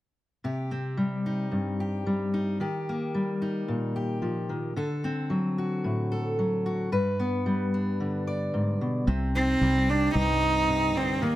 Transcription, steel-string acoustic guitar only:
0.44 1.52 C3 soft
0.44 1.79 G4 soft
0.71 2.57 C4 soft
0.97 2.05 G3 soft
1.26 2.32 D#4 soft
1.51 2.60 G2 soft
1.80 2.60 G4 soft
2.06 2.57 G3 soft
2.34 2.57 D#4 soft
2.60 4.48 D#3 medium
2.60 3.95 G4 soft
2.89 4.77 A#3 soft
3.14 4.21 G3 soft
3.42 4.73 D#4 soft
3.68 4.73 A#2 soft
3.96 4.77 G4 soft
4.22 4.49 F3 soft
4.49 4.76 D#3 soft
4.76 6.89 D3 medium
4.76 6.10 A4 soft
5.04 6.89 C4 soft
5.30 6.38 F#3 soft
5.58 6.65 F#4 soft
5.84 6.89 A2 soft
6.12 6.89 A4 soft
6.39 6.89 F#3 soft
6.66 6.89 F#4 soft
6.92 8.53 G2 medium
6.92 8.27 B4 medium
7.19 9.04 B3 soft
7.46 9.04 G3 soft
7.74 9.08 D4 soft
8.00 9.04 D3 soft
8.27 9.04 D5 soft
8.54 8.81 G#2 soft
8.81 9.08 B2 medium
9.07 10.15 C3 medium
9.07 9.88 C4 soft
9.35 11.19 D#4 soft
9.62 11.19 G3 soft
9.62 11.36 G4 medium
9.89 11.20 C4 soft
10.15 11.22 G2 medium
10.69 10.95 C3 medium
10.95 11.21 D3 medium
11.22 11.36 D#3 medium
11.22 11.36 A#3 medium

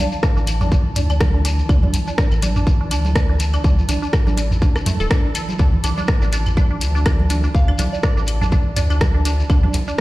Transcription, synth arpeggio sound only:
0.23 0.28 D4 medium
0.37 0.39 D4 medium
0.61 0.65 D4 medium
0.72 0.75 D4 medium
0.96 1.01 D4 medium
1.10 1.12 D4 medium
1.34 1.38 D4 medium
1.45 1.48 D4 medium
1.69 1.74 D4 medium
1.83 1.85 D4 medium
2.08 2.11 D4 medium
2.18 2.21 D4 medium
2.43 2.48 D4 medium
2.56 2.59 D4 medium
2.81 2.85 D4 medium
2.91 2.94 D4 medium
3.16 3.21 D4 medium
3.29 3.32 D4 medium
3.54 3.58 D4 medium
3.64 3.67 D4 medium
3.89 3.94 D4 medium
4.02 4.05 D4 medium
4.27 4.31 D4 medium
4.38 4.41 D4 medium
4.62 4.67 D4 medium
4.76 4.78 D4 medium
4.86 4.89 A3 medium
5.00 5.04 A4 loud
5.11 5.16 D4 loud
5.25 5.30 D4 medium
5.35 5.40 A4 medium
5.59 5.62 D4 medium
5.84 5.89 D4 medium
5.98 6.00 D4 medium
6.22 6.26 D4 medium
6.33 6.36 D4 medium
6.57 6.62 D4 medium
6.71 6.73 D4 medium
6.95 6.99 D4 medium
7.06 7.09 D4 medium
7.30 7.35 D4 medium
7.44 7.46 D4 medium
7.68 7.72 D4 medium
7.79 7.82 D4 medium
8.03 8.08 D4 medium
8.17 8.19 D4 medium
8.41 8.45 D4 medium
8.52 8.55 D4 medium
8.76 8.82 D4 medium
8.90 8.93 D4 medium
9.15 9.19 D4 medium
9.25 9.28 D4 medium
9.50 9.55 D4 medium
9.63 9.66 D4 medium
9.88 9.92 D4 medium

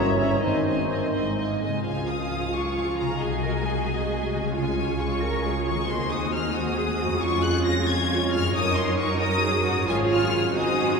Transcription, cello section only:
0.00 0.34 G2 soft
0.42 1.06 G#2 soft
1.14 1.78 G#2 soft
2.53 3.16 F4 soft
3.20 3.42 G#4 soft
3.42 3.65 A#4 soft
3.64 4.53 G#4 soft
4.53 5.20 F4 soft
5.21 5.43 A#4 medium
5.43 5.65 G#4 soft
5.65 5.73 F4 soft
5.86 6.52 D#4 soft
6.54 6.76 F#4 soft
6.76 6.98 G#4 medium
6.99 7.21 F#4 medium
7.21 8.52 F4 medium
8.54 9.20 D#4 medium
9.21 9.43 A#4 medium
9.42 9.65 G#4 medium
9.65 9.87 F#4 medium
9.87 10.54 F4 medium
10.55 11.00 D#4 soft

